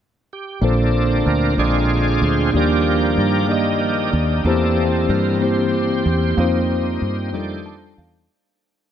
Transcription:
0.33 tonewheel organ G4
0.61 fingered electric bass A#1, tine electric piano A#2 A#3 D4 F4 A4 C5, tonewheel organ D3 A#3 C4 D4 A4
1.26 fingered electric bass D2, tonewheel organ A#4
1.57 fingered electric bass A#1, tine electric piano A#2 A#3 D4 F4 G#4 D5, tonewheel organ D3 G#3 C4 F4 G#4 D5
2.22 fingered electric bass D2, tonewheel organ C5
2.53 fingered electric bass D#2, tine electric piano D#3 A#3 D4 D#4 G4 D5, tonewheel organ F3 G3 A#3 G4 A#4
2.57 tonewheel organ D5
3.18 fingered electric bass G2
3.48 tine electric piano A#3 D#4 G4 D5 D#5, tonewheel organ D#4 G4 A#4
3.81 tonewheel organ F3 G3 D4
4.12 fingered electric bass D#2, tonewheel organ G4
4.45 fingered electric bass E2, tonewheel organ E3 A#3 C4 D4 A4, tine electric piano E3 A#3 C4 E4 G4 C5
5.09 fingered electric bass G2, tonewheel organ A#4
5.41 tine electric piano A#3 C4 E4 G4 C5, tonewheel organ G4 C5
6.06 fingered electric bass E2
6.37 fingered electric bass F2, tonewheel organ G3 A#3 D#4, tine electric piano A#3 C4 D#4 F4 C5
7.02 fingered electric bass G2
7.33 fingered electric bass F2, tonewheel organ D#3 G3 A3 D5, tine electric piano G3 D4 D#4 F4 A4
7.66 tine electric piano A5
7.98 fingered electric bass E2, tine electric piano F5

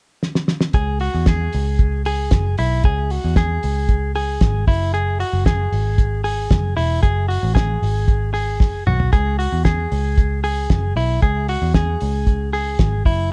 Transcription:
0.23 snare
0.35 snare
0.48 snare
0.61 snare
0.73 picked electric bass C#2, clean electric guitar G#4, kick, closed hi-hat
1.00 clean electric guitar F#4, open hi-hat
1.15 picked electric bass E2
1.26 clean electric guitar G#4, kick, snare, closed hi-hat
1.52 picked electric bass C#2, open hi-hat
1.79 kick, closed hi-hat
2.05 clean electric guitar G#4, open hi-hat
2.31 picked electric bass F#1, kick, snare, closed hi-hat
2.58 picked electric bass B1, clean electric guitar E4, open hi-hat
2.84 picked electric bass C#2, clean electric guitar G#4, kick, closed hi-hat
3.10 clean electric guitar F#4, open hi-hat
3.24 picked electric bass E2
3.36 clean electric guitar G#4, kick, snare, closed hi-hat
3.63 picked electric bass C#2, open hi-hat
3.89 kick, closed hi-hat
4.15 clean electric guitar G#4, open hi-hat
4.41 picked electric bass G#1, kick, snare, closed hi-hat
4.67 picked electric bass F#1, clean electric guitar E4, kick, open hi-hat
4.94 clean electric guitar G#4, closed hi-hat
5.20 clean electric guitar F#4, open hi-hat
5.33 picked electric bass F#1
5.46 clean electric guitar G#4, kick, snare, closed hi-hat
5.72 picked electric bass G#1, open hi-hat
5.98 kick, closed hi-hat
6.24 clean electric guitar G#4, open hi-hat
6.50 picked electric bass F#1, kick, snare, closed hi-hat
6.77 picked electric bass E1, clean electric guitar E4, open hi-hat
7.03 picked electric bass F#1, clean electric guitar G#4, kick, closed hi-hat
7.28 clean electric guitar F#4, open hi-hat
7.43 picked electric bass A1
7.55 clean electric guitar G#4, kick, snare, closed hi-hat
7.82 picked electric bass G#1, open hi-hat
8.08 kick, closed hi-hat
8.34 clean electric guitar G#4, open hi-hat
8.60 picked electric bass F#1, kick, snare
8.87 picked electric bass B1, clean electric guitar F#4, mid tom
9.00 floor tom
9.13 picked electric bass C#2, clean electric guitar G#4, kick, closed hi-hat
9.39 clean electric guitar F#4, open hi-hat
9.53 picked electric bass E2
9.65 clean electric guitar G#4, kick, snare, closed hi-hat
9.92 picked electric bass C#2, open hi-hat
10.18 kick, closed hi-hat
10.44 clean electric guitar G#4, open hi-hat
10.70 picked electric bass F#1, kick, snare, closed hi-hat
10.96 picked electric bass B1, clean electric guitar E4, open hi-hat
11.22 picked electric bass C#2, clean electric guitar G#4, kick, closed hi-hat
11.49 clean electric guitar F#4, open hi-hat
11.62 picked electric bass E2
11.74 clean electric guitar G#4, kick, snare, closed hi-hat
12.00 picked electric bass C#2, open hi-hat
12.27 kick, closed hi-hat
12.53 clean electric guitar G#4, open hi-hat
12.79 picked electric bass G#1, kick, snare, closed hi-hat
13.05 picked electric bass F#1, clean electric guitar E4, kick, open hi-hat

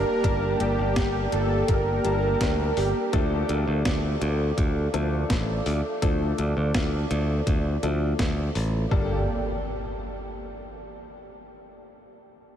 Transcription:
Already playing: grand piano G3 A#3 D4 A5, analog synth pad A#3 G4 D5 A5, supersaw synth A#4, sub drop
0.24 picked electric bass G1, grand piano G3 A#3 D4 A5, analog synth pad G5, kick, closed hi-hat
0.60 picked electric bass G1, supersaw synth G4, closed hi-hat
0.78 picked electric bass G1
0.96 picked electric bass G1, kick, snare, closed hi-hat
1.32 picked electric bass G1, supersaw synth A4, closed hi-hat
1.68 picked electric bass G1, supersaw synth A#4, kick, closed hi-hat
2.05 picked electric bass G1, grand piano G3 A#3 D4 A5, closed hi-hat
2.41 picked electric bass D2, kick, snare, closed hi-hat
2.77 picked electric bass G1, supersaw synth G4, open hi-hat
3.13 picked electric bass D2, grand piano F3 A3 D4 A4, analog synth pad A4 D5 F5 D6, kick, closed hi-hat
3.49 picked electric bass D2, closed hi-hat
3.67 picked electric bass D2
3.85 picked electric bass D2, kick, snare, closed hi-hat
4.21 picked electric bass D2, closed hi-hat
4.58 picked electric bass D2, kick, closed hi-hat
4.94 picked electric bass D2, grand piano F3 A3 D4 A4, closed hi-hat
5.30 picked electric bass A1, kick, snare, closed hi-hat
5.66 picked electric bass D2, open hi-hat
6.02 picked electric bass D2, grand piano F3 A3 D4 A4, kick, closed hi-hat
6.38 picked electric bass D2, closed hi-hat
6.57 picked electric bass D2
6.74 picked electric bass D2, kick, snare, closed hi-hat
7.11 picked electric bass D2, closed hi-hat
7.47 picked electric bass D2, kick, closed hi-hat
7.83 picked electric bass D2, grand piano F3 A3 D4 A4, closed hi-hat
8.19 picked electric bass D2, kick, snare, closed hi-hat
8.55 picked electric bass A1, open hi-hat
8.91 picked electric bass G1, grand piano G3 A#3 D4 A4, analog synth pad A#3 G4 A4 D5 G5, kick, impact

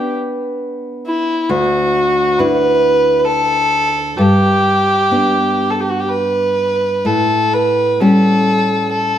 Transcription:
Already playing: nylon-string guitar B3 D4 G4 B4, fiddle G4
1.07 fiddle E4
1.49 nylon-string guitar D2, fiddle F#4
2.39 nylon-string guitar D4 E4 F#4, fiddle B4
3.19 fiddle B4
3.25 fiddle A4
4.17 nylon-string guitar G2, fiddle G4
5.11 nylon-string guitar B3 D4
5.70 fiddle A4
5.81 fiddle G4
5.89 fiddle F#4
6.00 fiddle G4
6.09 fiddle B4
7.05 nylon-string guitar A2, fiddle A4
7.54 fiddle B4
8.00 nylon-string guitar G3 C#4 G4, fiddle A4
8.91 fiddle A4

